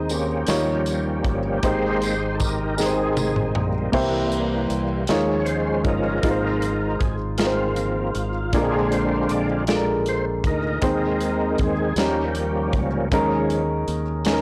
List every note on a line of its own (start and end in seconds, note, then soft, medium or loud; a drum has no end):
0.00 0.44 D#2 medium
0.00 0.44 D#3 medium
0.00 0.23 G#3 medium
0.00 0.23 C4 medium
0.00 0.13 D#4 medium
0.00 0.24 D#4 medium
0.00 0.27 C5 medium
0.09 1.60 A#3 medium
0.09 0.48 C#4 medium
0.09 1.63 G4 medium
0.09 closed hi-hat soft
0.09 tambourine medium
0.47 1.21 D#2 medium
0.47 1.59 D#3 soft
0.47 1.60 F3 soft
0.47 1.38 G3 medium
0.47 1.60 G3 soft
0.47 1.60 C#4 soft
0.47 1.38 D#4 medium
0.47 1.39 F4 medium
0.47 1.39 C#5 medium
0.47 snare medium
0.47 closed hi-hat medium
0.47 tambourine medium
0.86 closed hi-hat soft
0.86 tambourine soft
1.24 1.60 G1 medium
1.24 kick medium
1.24 closed hi-hat soft
1.63 3.51 G#1 medium
1.63 2.75 G#2 medium
1.63 2.14 G#3 soft
1.63 2.54 G#3 medium
1.63 2.14 A#3 soft
1.63 2.15 C4 medium
1.63 2.54 D#4 medium
1.63 2.75 D#4 medium
1.63 2.54 G4 medium
1.63 2.75 G4 medium
1.63 2.36 C5 medium
1.63 2.54 C5 medium
1.63 kick medium
1.63 closed hi-hat medium
2.02 closed hi-hat soft
2.02 tambourine soft
2.34 2.41 A4 medium
2.40 2.81 A#4 medium
2.40 kick medium
2.40 closed hi-hat soft
2.40 tambourine soft
2.77 3.68 G#3 medium
2.77 3.56 C4 soft
2.77 3.69 D#4 medium
2.77 3.90 D#4 soft
2.77 3.69 G4 soft
2.77 3.62 G#4 medium
2.77 2.85 A#4 soft
2.77 snare soft
2.77 tambourine medium
2.86 3.72 C5 medium
3.17 high tom medium
3.17 tambourine soft
3.36 mid tom medium
3.55 3.91 A#1 medium
3.55 3.90 G3 soft
3.55 3.91 A#3 soft
3.55 3.91 C4 soft
3.55 mid tom medium
3.92 4.66 C2 medium
3.92 5.05 C3 medium
3.92 5.04 E3 soft
3.92 5.05 G3 soft
3.92 4.83 A#3 medium
3.92 5.05 A#3 medium
3.92 4.84 E4 medium
3.92 4.84 G4 medium
3.92 4.84 C5 medium
3.92 kick medium
3.92 crash medium
4.32 closed hi-hat soft
4.70 5.06 C2 medium
4.70 closed hi-hat soft
5.07 5.81 D#2 medium
5.07 6.20 D#3 medium
5.07 6.19 F3 soft
5.07 5.99 G#3 medium
5.07 6.20 G#3 soft
5.07 6.20 C#4 soft
5.07 5.99 D#4 medium
5.07 5.99 F4 medium
5.07 6.00 C#5 medium
5.07 snare medium
5.07 closed hi-hat medium
5.39 5.46 C#5 soft
5.45 5.82 C5 medium
5.45 closed hi-hat soft
5.84 6.20 G1 medium
5.84 6.96 D#4 medium
5.84 6.96 F4 medium
5.84 7.03 A#4 medium
5.84 kick medium
5.84 closed hi-hat soft
6.20 6.96 G#1 medium
6.20 7.35 G#2 medium
6.20 6.73 F3 soft
6.20 7.13 G#3 medium
6.20 6.73 A#3 soft
6.20 6.74 C4 medium
6.20 7.14 D#4 medium
6.20 7.14 F4 medium
6.20 kick loud
6.20 closed hi-hat medium
6.24 6.30 A#4 medium
6.31 7.17 C5 medium
6.62 closed hi-hat soft
6.99 8.11 G#1 medium
6.99 7.16 G#4 medium
6.99 kick medium
6.99 closed hi-hat soft
7.38 8.29 G#3 medium
7.38 7.75 C4 medium
7.38 8.29 D#4 medium
7.38 8.14 F4 medium
7.38 8.29 F4 medium
7.38 7.46 A#4 soft
7.38 snare loud
7.38 closed hi-hat medium
7.46 8.32 C5 medium
7.75 8.10 F3 soft
7.75 8.10 A#3 soft
7.75 8.11 C4 soft
7.75 closed hi-hat soft
8.15 8.53 G#1 medium
8.15 8.53 F4 medium
8.15 closed hi-hat soft
8.53 9.26 A#1 medium
8.53 9.65 A#2 medium
8.53 9.64 D3 soft
8.53 9.43 G#3 medium
8.53 9.64 G#3 medium
8.53 9.64 C4 medium
8.53 9.44 D4 medium
8.53 9.65 D4 medium
8.53 9.44 F4 medium
8.53 9.65 F4 medium
8.53 8.93 G#4 medium
8.53 9.44 A#4 medium
8.53 kick medium
8.53 closed hi-hat medium
8.92 9.31 C5 medium
8.92 closed hi-hat soft
9.29 10.41 A#1 medium
9.29 9.48 D5 medium
9.29 closed hi-hat soft
9.67 10.58 G#3 medium
9.67 10.58 D4 medium
9.67 10.58 F4 medium
9.67 9.75 A4 medium
9.67 9.85 D5 medium
9.67 snare medium
9.67 closed hi-hat medium
9.75 10.62 A#4 medium
10.06 10.25 C5 medium
10.06 closed hi-hat soft
10.44 10.79 D2 medium
10.44 11.56 D#4 medium
10.44 11.22 A#4 medium
10.44 kick medium
10.44 closed hi-hat soft
10.82 11.55 D#2 medium
10.82 11.93 D#3 medium
10.82 11.94 D#3 medium
10.82 11.72 G#3 medium
10.82 11.94 G#3 soft
10.82 11.72 C4 medium
10.82 11.94 C4 medium
10.82 11.73 D#4 medium
10.82 11.73 C5 medium
10.82 kick loud
10.82 closed hi-hat medium
11.21 11.61 A#4 medium
11.21 closed hi-hat soft
11.58 11.94 D#2 medium
11.58 11.99 G#4 medium
11.58 kick medium
11.58 closed hi-hat soft
11.96 12.69 D#2 medium
11.96 13.08 D#3 soft
11.96 13.08 F3 soft
11.96 12.87 G3 medium
11.96 13.08 G3 soft
11.96 13.09 A#3 soft
11.96 12.87 C#4 medium
11.96 13.09 C#4 medium
11.96 12.87 D#4 medium
11.96 12.87 A#4 medium
11.96 snare medium
11.96 closed hi-hat medium
12.00 12.81 G4 medium
12.35 closed hi-hat soft
12.73 13.09 C#2 medium
12.73 kick medium
12.73 closed hi-hat soft
13.11 13.84 D#2 medium
13.11 14.23 D#3 medium
13.11 13.62 F3 medium
13.11 14.02 G#3 medium
13.11 13.63 G#3 medium
13.11 14.02 C#4 medium
13.11 13.63 C#4 medium
13.11 14.02 D#4 medium
13.11 14.02 A#4 medium
13.11 kick medium
13.11 closed hi-hat medium
13.50 closed hi-hat soft
13.88 14.41 D#2 medium
13.88 closed hi-hat soft
14.25 14.41 G#3 medium
14.25 14.41 C#4 medium
14.25 14.41 D#4 medium
14.25 14.33 G#4 medium
14.25 snare loud
14.25 closed hi-hat medium
14.33 14.41 A#4 medium